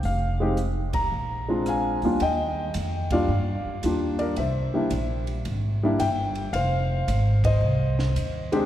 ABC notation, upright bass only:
X:1
M:4/4
L:1/8
Q:"Swing" 1/4=111
K:Bb
V:1 name="Upright bass" clef=bass
F,,,4 B,,,3 D,, | [K:Eb] E,,2 F,,2 G,, z E,,2 | C,, z B,,,2 A,,,2 G,,,2 | F,,,2 A,,,2 C,,2 E,,2 |]